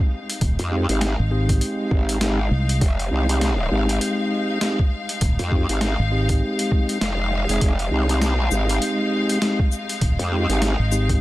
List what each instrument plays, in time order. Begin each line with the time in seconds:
Already playing: string section G#3 D#4 F5
0.30 closed hi-hat
0.41 fingered electric bass D#1, kick, closed hi-hat
0.59 wobble bass F2, closed hi-hat
0.71 tonewheel organ G#3 C4 D#4 G4
0.89 wobble bass G#1, tonewheel organ G#3 C4 D#4 G4, snare, closed hi-hat
1.01 snare, closed hi-hat
1.19 fingered electric bass G#1
1.31 tonewheel organ G#3 C4 D#4 G4
1.49 kick, closed hi-hat
1.61 closed hi-hat
1.91 wobble bass G#1, kick
2.09 closed hi-hat
2.21 tonewheel organ G#3 C4 D#4 G4, snare, closed hi-hat
2.51 fingered electric bass C2
2.69 closed hi-hat
2.81 wobble bass F1, kick, closed hi-hat
2.99 closed hi-hat
3.11 wobble bass C2, tonewheel organ G#3 C4 D#4 G4
3.29 tonewheel organ G#3 C4 D#4 G4, closed hi-hat
3.41 snare, closed hi-hat
3.71 wobble bass G#1, tonewheel organ G#3 C4 D#4 G4
3.89 closed hi-hat
4.01 closed hi-hat
4.61 tonewheel organ G#3 C4 D#4 G4, snare, closed hi-hat
4.79 kick
5.09 closed hi-hat
5.21 fingered electric bass D#1, kick, closed hi-hat
5.39 wobble bass F2, closed hi-hat
5.51 tonewheel organ G#3 C4 D#4 G4, kick
5.69 wobble bass G#1, tonewheel organ G#3 C4 D#4 G4, snare, closed hi-hat
5.81 snare, closed hi-hat
5.99 fingered electric bass G#1
6.11 tonewheel organ G#3 C4 D#4 G4
6.29 kick, closed hi-hat
6.59 closed hi-hat
6.72 kick
6.89 closed hi-hat
7.01 wobble bass F1, snare, closed hi-hat
7.49 wobble bass F1, tonewheel organ G#3 C4 D#4 G#4, closed hi-hat
7.61 wobble bass F1, kick, closed hi-hat
7.79 closed hi-hat
7.91 wobble bass C2, tonewheel organ G#3 C4 D#4 G4
8.09 tonewheel organ G#3 C4 D#4 G4, closed hi-hat
8.22 snare, closed hi-hat
8.32 wobble bass B1
8.51 wobble bass G#1, tonewheel organ G#3 C4 D#4 G4, shaker
8.69 closed hi-hat
8.82 closed hi-hat
9.29 closed hi-hat
9.42 tonewheel organ G#3 C4 D#4 G4, snare, closed hi-hat
9.59 kick
9.72 shaker
9.89 closed hi-hat
10.01 fingered electric bass D#1, kick, closed hi-hat
10.19 wobble bass F2, closed hi-hat
10.32 tonewheel organ G#3 C4 D#4 G4
10.49 wobble bass G#1, tonewheel organ G#3 C4 D#4 G4, snare, closed hi-hat
10.62 snare, closed hi-hat
10.79 fingered electric bass G#1
10.92 tonewheel organ G#3 C4 D#4 G4, shaker
11.09 kick, closed hi-hat